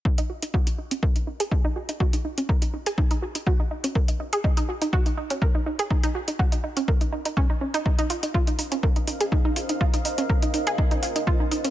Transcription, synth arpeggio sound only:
X:1
M:4/4
L:1/16
Q:"Swing 16ths" 1/4=123
K:Ebdor
V:1 name="Synth arpeggio sound"
E E G E G E E D B E E A E E G E | G E E D B E E A E E G E G E E D | B E E A E E G E G E E D B E E A | E E G E G E E D B E E E D E D E |
E E F E F E E D B E E A E E F E | F E E D B E E A E E F E F E E D |]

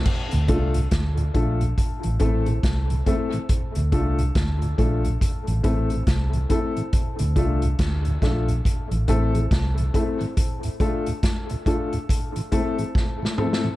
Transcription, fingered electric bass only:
X:1
M:4/4
L:1/16
Q:"Swing 16ths" 1/4=70
K:Dm
V:1 name="Fingered electric bass" clef=bass
z D,, C,,2 D,,2 B,,,2 z A,,, A,,,2 C,,2 z2 | z D,, C,,2 D,,2 B,,,2 z A,,, A,,,2 C,,2 z2 | z D,, C,,2 D,,2 B,,,2 z A,,, A,,,2 C,,2 z2 | z16 |]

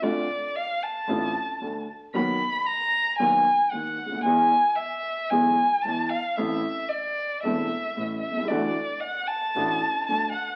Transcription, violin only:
X:1
M:4/4
L:1/8
Q:1/4=113
K:Ddor
V:1 name="Violin"
d2 f a4 z | b2 _b2 ^g2 ^f2 | ^g2 e2 g2 a f | e2 d2 e3 e |
d2 ^f a3 a f |]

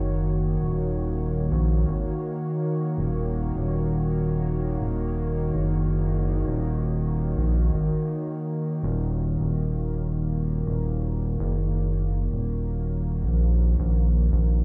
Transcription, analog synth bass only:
X:1
M:4/4
L:1/16
Q:"Swing 16ths" 1/4=82
K:Ebm
V:1 name="Analog synth bass" clef=bass
G,,,3 E,,,4- E,,, B,,,2 A,,, z4 z | E,,,3 E,,,6- E,,, E,,,4 G,,,2- | G,,,3 E,,,4- E,,, B,,,2 A,,, z4 z | E,,,3 E,,,6- E,,, E,,,4 G,,,2- |
G,,,3 E,,,4- E,,, B,,,3 B,,,3 B,,,2 |]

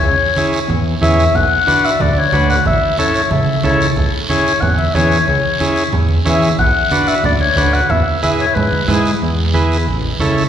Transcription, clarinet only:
X:1
M:4/4
L:1/16
Q:1/4=183
K:C#phr
V:1 name="Clarinet"
c6 z6 e4 | f6 e2 d2 c4 f2 | e4 c2 c2 e4 c3 z | z4 c4 f2 e2 c4 |
c6 z6 e4 | f6 e2 d2 c4 f2 | e4 e2 c2 B4 G3 z | z16 |]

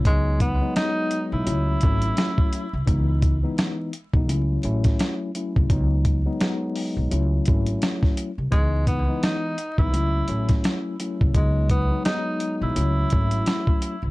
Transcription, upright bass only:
X:1
M:4/4
L:1/16
Q:"Swing 16ths" 1/4=85
K:Bmix
V:1 name="Upright bass" clef=bass
C,,4 z3 B,,, C,,2 G,,,2 z3 ^B,,, | C,,4 z3 B,,, C,,2 A,,,2 z3 ^B,,, | C,,4 z3 B,,, C,,2 G,,,2 z3 ^B,,, | C,,4 z3 B,,, C,,2 A,,,2 z3 ^B,,, |
C,,4 z3 B,,, C,,2 G,,,2 z3 ^B,,, |]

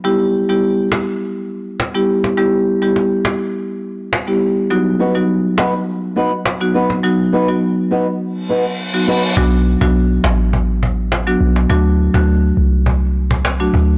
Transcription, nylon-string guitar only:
X:1
M:4/4
L:1/8
Q:1/4=103
K:Em
V:1 name="Nylon-string guitar"
z8 | z8 | z [B,^DFB] z [B,DFB] z [B,DFB] z [B,DFB] | z [B,^DFB] z [B,DFB] z [B,DFB] z [B,DFB] |
[K:Bphr] z8 | z8 |]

